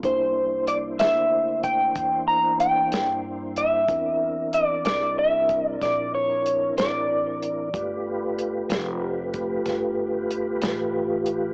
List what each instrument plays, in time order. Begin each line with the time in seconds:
0.03 upright bass C2, tonewheel organ A#3 D4 E4 C5, clean electric guitar C5, kick, closed hi-hat
0.67 clean electric guitar D5, closed hi-hat
0.99 upright bass D2, clean electric guitar E5, snare, closed hi-hat
1.64 clean electric guitar G5, kick, closed hi-hat
1.95 upright bass E2, kick, closed hi-hat
2.28 clean electric guitar A#5
2.60 clean electric guitar G5, closed hi-hat
2.92 upright bass G2, snare, closed hi-hat
3.56 clean electric guitar E5, closed hi-hat
3.88 upright bass E2, tonewheel organ C4 D4 E4 A#4, kick, closed hi-hat
4.53 clean electric guitar D5, closed hi-hat
4.85 upright bass C2, clean electric guitar D5, snare, closed hi-hat
5.19 clean electric guitar E5
5.49 kick, closed hi-hat
5.69 clean electric guitar D5
5.81 upright bass A#1, clean electric guitar D5, kick, snare, closed hi-hat
6.15 clean electric guitar C#5
6.46 closed hi-hat
6.77 upright bass A1, clean electric guitar D5, snare, closed hi-hat
7.42 closed hi-hat
7.73 upright bass G1, tonewheel organ A3 F4 G4 B4, kick, closed hi-hat
8.39 closed hi-hat
8.69 upright bass F1, snare, closed hi-hat
9.34 kick, closed hi-hat
9.66 upright bass G1, kick, snare, closed hi-hat
10.30 closed hi-hat
10.62 upright bass A1, snare, closed hi-hat
11.26 closed hi-hat